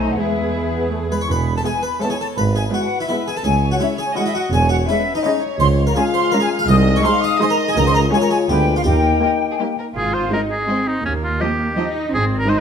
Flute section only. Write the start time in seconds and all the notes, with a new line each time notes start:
0.10 F#5
0.18 E5
1.10 B5
1.21 C#6
1.29 B5
1.56 A5
1.65 G#5
1.84 B5
2.01 A5
2.11 G#5
2.20 A5
2.36 B5
2.56 G#5
2.74 F#5
3.00 E5
3.08 E5
3.26 G#5
3.36 A5
3.44 G#5
3.71 F#5
3.81 E5
3.97 G#5
4.15 F#5
4.26 E5
4.34 F#5
4.52 G#5
4.69 F#5
4.87 E5
5.15 D#5
5.24 D#5
5.60 C6
5.88 A#5
5.97 G#5
6.14 C6
6.32 A#5
6.42 G#5
6.60 F6
6.69 D#6
6.95 C#6
7.05 C6
7.22 D#6
7.40 C6
7.50 A#5
7.69 G#5
7.77 A#5
7.87 C6
7.94 A#5
8.12 G#5
8.21 A#5
8.30 G#5
8.48 G5
8.76 F5
8.86 G5